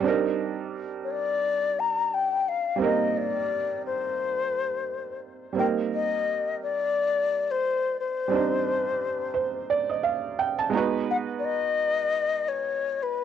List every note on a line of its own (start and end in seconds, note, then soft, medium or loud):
0.00 2.74 G3 medium
0.00 2.75 C4 medium
0.00 2.76 D4 medium
0.06 2.77 D#4 medium
0.06 2.78 A#4 medium
1.04 1.12 C#5 medium
1.11 1.81 D5 loud
1.80 2.15 A#5 loud
2.14 2.50 G5 medium
2.49 2.82 F5 loud
2.76 5.50 G3 medium
2.76 5.52 A#3 medium
2.76 5.51 C4 medium
2.81 5.53 D#4 medium
2.81 5.54 A#4 medium
2.81 3.19 D#5 medium
3.17 3.85 D5 loud
3.86 5.19 C5 medium
5.53 8.26 G3 medium
5.53 8.28 A#3 medium
5.53 8.27 C4 medium
5.58 8.29 D#4 medium
5.58 8.30 A#4 medium
5.58 5.67 G5 medium
5.94 6.57 D#5 loud
6.62 7.52 D5 loud
7.51 7.99 C5 medium
8.00 10.02 C5 medium
8.28 10.67 G3 medium
8.28 10.68 C4 medium
8.28 10.69 D4 medium
8.33 10.70 D#4 medium
8.33 9.32 C5 medium
9.34 9.67 C5 medium
9.70 9.88 D5 medium
9.90 10.03 D#5 medium
10.03 10.36 F5 medium
10.39 10.57 G5 medium
10.59 10.72 A5 medium
10.70 13.24 G#3 medium
10.70 13.24 B3 medium
10.70 13.24 D#4 medium
10.70 11.06 A#5 medium
10.75 13.24 F#4 medium
10.75 13.24 B4 medium
11.11 11.17 F#5 loud
11.39 11.46 D5 medium
11.45 12.50 D#5 loud
12.48 13.04 C#5 medium
13.03 13.24 B4 medium